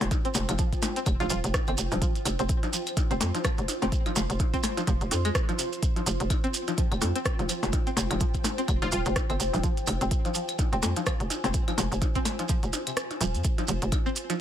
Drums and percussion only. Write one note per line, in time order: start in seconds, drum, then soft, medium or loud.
0.01 open hi-hat soft
0.01 percussion blips loud
0.01 shekere soft
0.11 kick loud
0.11 closed hi-hat medium
0.11 percussion blips soft
0.11 shekere medium
0.25 closed hi-hat soft
0.25 shekere soft
0.34 open hi-hat loud
0.34 percussion blips loud
0.34 shekere medium
0.49 closed hi-hat soft
0.49 percussion blips soft
0.49 claves medium
0.49 shekere soft
0.58 kick loud
0.58 closed hi-hat medium
0.58 shekere medium
0.73 kick medium
0.73 closed hi-hat soft
0.73 shekere soft
0.82 open hi-hat loud
0.82 percussion blips soft
0.82 percussion blips loud
0.82 shekere medium
0.96 closed hi-hat soft
0.96 shekere soft
1.06 kick loud
1.06 closed hi-hat medium
1.06 claves medium
1.06 shekere medium
1.20 closed hi-hat soft
1.20 percussion blips soft
1.20 shekere soft
1.30 open hi-hat medium
1.30 shekere medium
1.44 closed hi-hat soft
1.44 shekere soft
1.54 kick loud
1.54 cross-stick loud
1.54 closed hi-hat medium
1.54 percussion blips soft
1.54 shekere medium
1.67 closed hi-hat soft
1.67 claves medium
1.67 shekere soft
1.78 open hi-hat medium
1.78 shekere loud
1.91 open hi-hat soft
1.91 percussion blips soft
1.91 shekere soft
2.02 kick loud
2.02 closed hi-hat medium
2.02 shekere medium
2.16 closed hi-hat soft
2.16 shekere soft
2.25 open hi-hat loud
2.25 percussion blips soft
2.25 claves medium
2.25 shekere medium
2.39 closed hi-hat soft
2.39 shekere soft
2.49 kick loud
2.49 closed hi-hat medium
2.49 shekere medium
2.63 closed hi-hat soft
2.63 percussion blips soft
2.63 shekere soft
2.73 open hi-hat medium
2.73 shekere loud
2.87 closed hi-hat soft
2.87 claves medium
2.87 shekere soft
2.97 kick loud
2.97 closed hi-hat medium
2.97 percussion blips soft
2.97 shekere medium
3.11 closed hi-hat soft
3.11 shekere soft
3.21 open hi-hat loud
3.21 percussion blips medium
3.21 shekere loud
3.35 closed hi-hat soft
3.35 percussion blips soft
3.35 shekere soft
3.44 kick loud
3.44 cross-stick loud
3.44 closed hi-hat medium
3.44 claves medium
3.44 shekere medium
3.58 closed hi-hat soft
3.58 shekere soft
3.68 open hi-hat loud
3.68 percussion blips soft
3.68 shekere medium
3.82 open hi-hat soft
3.82 percussion blips medium
3.82 shekere soft
3.92 kick loud
3.92 closed hi-hat soft
3.92 shekere medium
4.06 closed hi-hat soft
4.06 percussion blips soft
4.06 claves medium
4.06 shekere soft
4.16 open hi-hat loud
4.16 percussion blips medium
4.16 shekere loud
4.30 closed hi-hat soft
4.30 shekere soft
4.39 kick loud
4.39 closed hi-hat soft
4.39 percussion blips soft
4.39 shekere medium
4.54 kick medium
4.54 closed hi-hat soft
4.54 shekere soft
4.63 open hi-hat medium
4.63 percussion blips medium
4.63 claves medium
4.63 shekere medium
4.77 closed hi-hat soft
4.77 percussion blips soft
4.77 shekere soft
4.87 kick loud
4.87 closed hi-hat medium
4.87 shekere medium
5.01 closed hi-hat soft
5.01 shekere soft
5.11 open hi-hat loud
5.11 percussion blips soft
5.11 shekere loud
5.25 closed hi-hat soft
5.25 claves medium
5.25 shekere soft
5.35 kick loud
5.35 cross-stick loud
5.35 closed hi-hat medium
5.35 shekere medium
5.49 closed hi-hat soft
5.49 percussion blips soft
5.49 shekere soft
5.59 open hi-hat loud
5.59 shekere loud
5.72 open hi-hat soft
5.72 shekere soft
5.83 kick loud
5.83 closed hi-hat medium
5.83 shekere medium
5.96 closed hi-hat soft
5.96 percussion blips soft
5.96 shekere soft
6.06 open hi-hat medium
6.06 shekere loud
6.20 closed hi-hat soft
6.20 shekere soft
6.30 kick loud
6.30 closed hi-hat medium
6.30 percussion blips soft
6.30 claves medium
6.30 shekere medium
6.44 closed hi-hat soft
6.44 shekere soft
6.54 open hi-hat medium
6.54 shekere medium
6.67 closed hi-hat soft
6.67 percussion blips soft
6.67 shekere soft
6.78 kick loud
6.78 closed hi-hat medium
6.78 shekere medium
6.92 closed hi-hat soft
6.92 claves medium
6.92 shekere soft
7.01 open hi-hat medium
7.01 percussion blips soft
7.01 percussion blips medium
7.01 shekere medium
7.16 closed hi-hat soft
7.16 shekere soft
7.25 kick loud
7.25 cross-stick loud
7.25 closed hi-hat soft
7.25 shekere medium
7.39 closed hi-hat soft
7.39 percussion blips soft
7.39 shekere soft
7.49 open hi-hat medium
7.49 claves medium
7.49 shekere loud
7.63 open hi-hat soft
7.63 percussion blips medium
7.63 shekere soft
7.72 kick loud
7.72 closed hi-hat medium
7.72 percussion blips soft
7.72 shekere soft
7.87 closed hi-hat soft
7.87 shekere soft
7.97 open hi-hat medium
7.97 percussion blips medium
7.97 shekere medium
8.10 closed hi-hat soft
8.10 percussion blips soft
8.10 claves medium
8.10 shekere soft
8.20 kick loud
8.20 closed hi-hat medium
8.20 shekere medium
8.34 kick medium
8.34 closed hi-hat soft
8.34 shekere soft
8.44 open hi-hat medium
8.44 percussion blips soft
8.44 percussion blips medium
8.44 shekere medium
8.58 closed hi-hat soft
8.58 shekere soft
8.68 kick loud
8.68 closed hi-hat medium
8.68 claves medium
8.68 shekere medium
8.82 closed hi-hat soft
8.82 percussion blips soft
8.82 shekere soft
8.92 open hi-hat medium
8.92 shekere medium
9.06 closed hi-hat soft
9.06 shekere soft
9.16 kick loud
9.16 cross-stick loud
9.16 closed hi-hat medium
9.16 percussion blips soft
9.16 shekere medium
9.30 closed hi-hat soft
9.30 claves medium
9.30 shekere soft
9.40 open hi-hat medium
9.40 shekere medium
9.54 open hi-hat soft
9.54 percussion blips soft
9.54 shekere soft
9.63 kick loud
9.63 closed hi-hat medium
9.63 shekere soft
9.77 closed hi-hat soft
9.77 shekere soft
9.87 open hi-hat medium
9.87 percussion blips soft
9.87 claves medium
9.87 shekere medium
10.01 closed hi-hat soft
10.01 shekere soft
10.11 kick loud
10.11 closed hi-hat medium
10.11 shekere soft
10.25 closed hi-hat soft
10.25 percussion blips soft
10.25 shekere soft
10.34 open hi-hat medium
10.34 shekere medium
10.48 closed hi-hat soft
10.48 claves medium
10.48 shekere soft
10.58 kick loud
10.58 closed hi-hat medium
10.58 percussion blips soft
10.58 shekere soft
10.72 closed hi-hat soft
10.72 shekere soft
10.83 open hi-hat medium
10.83 percussion blips medium
10.83 shekere medium
10.96 closed hi-hat soft
10.96 percussion blips soft
10.96 shekere soft
11.06 kick loud
11.06 cross-stick loud
11.06 closed hi-hat medium
11.06 claves medium
11.06 shekere soft
11.20 closed hi-hat soft
11.20 shekere soft
11.30 open hi-hat medium
11.30 percussion blips soft
11.30 shekere medium
11.44 open hi-hat soft
11.44 percussion blips medium
11.44 shekere soft
11.54 kick loud
11.54 closed hi-hat medium
11.54 shekere soft
11.68 closed hi-hat soft
11.68 percussion blips soft
11.68 claves medium
11.68 shekere soft
11.78 open hi-hat medium
11.78 percussion blips medium
11.78 shekere loud
11.92 open hi-hat soft
11.92 shekere soft
12.02 kick loud
12.02 closed hi-hat medium
12.02 percussion blips soft
12.02 shekere soft
12.15 kick medium
12.15 closed hi-hat soft
12.15 shekere soft
12.25 open hi-hat medium
12.25 percussion blips medium
12.25 claves medium
12.25 shekere medium
12.39 closed hi-hat soft
12.39 percussion blips soft
12.39 shekere soft
12.48 kick loud
12.48 closed hi-hat medium
12.48 shekere medium
12.63 closed hi-hat soft
12.63 shekere soft
12.73 open hi-hat medium
12.73 percussion blips soft
12.73 shekere medium
12.87 closed hi-hat soft
12.87 claves medium
12.87 shekere soft
12.97 cross-stick loud
12.97 closed hi-hat medium
12.97 shekere soft
13.11 closed hi-hat soft
13.11 percussion blips soft
13.11 shekere soft
13.21 open hi-hat medium
13.21 shekere medium
13.34 open hi-hat soft
13.34 shekere soft
13.44 kick loud
13.44 closed hi-hat medium
13.44 shekere medium
13.58 closed hi-hat soft
13.58 percussion blips soft
13.58 shekere soft
13.68 open hi-hat loud
13.68 shekere loud
13.82 closed hi-hat soft
13.82 shekere soft
13.92 kick loud
13.92 closed hi-hat medium
13.92 percussion blips soft
13.92 claves medium
13.92 shekere medium
14.06 shekere soft
14.16 open hi-hat medium
14.16 shekere medium
14.30 closed hi-hat soft
14.30 percussion blips soft
14.30 shekere soft